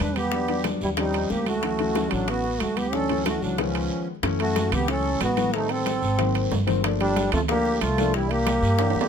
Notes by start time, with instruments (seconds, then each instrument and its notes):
Already playing: grand piano D#3 G3 A3 D5
0.00 upright bass E2, trombone D4, accordion B4, high conga, high timbale, short guiro
0.16 trombone B3, accordion G4, high bongo, high conga, high timbale, short guiro
0.32 grand piano F#3 G3 B3 D4, high bongo, long guiro
0.48 grand piano F#3 G3 B3 D4, high bongo, high conga, high timbale
0.64 grand piano F#3 G3 B3 D4, high bongo, high conga, high timbale, short guiro
0.81 upright bass D#2, trombone G3, accordion E4, high conga, short guiro
0.97 grand piano F3 G3 C4 C#4, trombone G3, accordion D#4, high bongo, high conga, high timbale, long guiro
1.13 high bongo, high conga, high timbale
1.30 upright bass D2, trombone A#3, accordion G4, high bongo, low bongo, high conga, short guiro
1.46 trombone A3, accordion F#4, high bongo, high conga, high timbale, short guiro
1.63 grand piano E3 F#3 A3 C#4, high bongo, high conga, high timbale, long guiro
1.79 grand piano E3 F#3 A3 C#4, high bongo, high conga, high timbale
1.95 grand piano E3 F#3 A3 C#4, high bongo, high conga, high timbale, short guiro
2.11 upright bass A1, trombone F#3, accordion D4, high timbale, short guiro
2.28 trombone B3, accordion F#4, high bongo, high conga, high timbale, long guiro
2.44 high bongo, high conga
2.60 upright bass D2, trombone A3, accordion F#4, high bongo, low bongo, high conga, high timbale, short guiro
2.77 trombone B3, accordion G4, high bongo, high conga, high timbale, short guiro
2.92 grand piano E3 F#3 A3 D4, trombone C#4, accordion A4, high bongo, high conga, long guiro
3.09 grand piano E3 F#3 A3 C#4, high bongo, high conga, high timbale
3.25 grand piano E3 F#3 A3 C#4, trombone A3, accordion F#4, high bongo, high conga, high timbale, short guiro
3.42 upright bass C#2, trombone F#3, accordion D4, high conga, short guiro
3.58 grand piano D#3 F3 G#3 B3, trombone F3, accordion C#4, high bongo, high conga, high timbale, long guiro
3.75 high bongo, high conga, high timbale
4.23 upright bass F#2, grand piano E3 F#3 A3 C#4, high bongo, high conga, high timbale, long guiro
4.39 trombone A3, accordion F#4, high bongo, high conga, high timbale
4.56 high bongo, high conga, high timbale, short guiro
4.72 upright bass C#2, trombone B3, accordion G4, high conga, low conga, high timbale, short guiro
4.88 grand piano E3 F#3 A3 C#4, trombone C#4, accordion A4, high bongo, high conga, high timbale, long guiro
5.05 high bongo, high conga
5.21 upright bass A1, trombone B3, accordion F#4, high bongo, low bongo, high conga, high timbale, low timbale, short guiro
5.37 grand piano E3 F#3 A3 B3, high bongo, high conga, high timbale, short guiro
5.53 grand piano D#3 G3 B3 C4, trombone A3, accordion D#4, high bongo, long guiro
5.69 trombone C4, accordion A4, high bongo, high conga, high timbale
5.86 high bongo, high conga, high timbale, short guiro
6.02 upright bass G#1, short guiro
6.18 grand piano D#3 F#3 A#3 C4, high bongo, high conga, high timbale, long guiro
6.35 high bongo, high conga, high timbale
6.51 upright bass G1, high bongo, low bongo, high conga, low timbale, short guiro
6.67 grand piano D#3 F#3 A#3 C4, high bongo, high conga, high timbale, short guiro
6.83 grand piano F3 A3 A#3 D4, high bongo, high conga, high timbale, long guiro
7.00 trombone G3, accordion D4, high bongo, high conga, high timbale
7.16 high bongo, high conga, high timbale, short guiro
7.32 upright bass D2, trombone A3, accordion F4, high conga, low conga, high timbale, short guiro
7.48 grand piano F3 A#3 D4 A4, trombone A#3, accordion G4, high bongo, high conga, high timbale, long guiro
7.65 high bongo, high conga
7.81 upright bass C2, trombone A3, accordion F4, high bongo, low bongo, high conga, high timbale, short guiro
7.98 grand piano F3 A3 A#3 D4, high bongo, high conga, high timbale, short guiro
8.14 grand piano E3 G3 A#3, trombone G3, accordion E4, high bongo, high conga, long guiro
8.30 trombone A#3, accordion G4, high bongo, high conga, high timbale
8.47 high bongo, high conga, high timbale, short guiro
8.62 upright bass G2, high conga, short guiro
8.79 grand piano E3 G3 A#3 D4, high bongo, high conga, high timbale, long guiro
8.90 high timbale
8.95 upright bass E2, high bongo, high conga
9.01 low timbale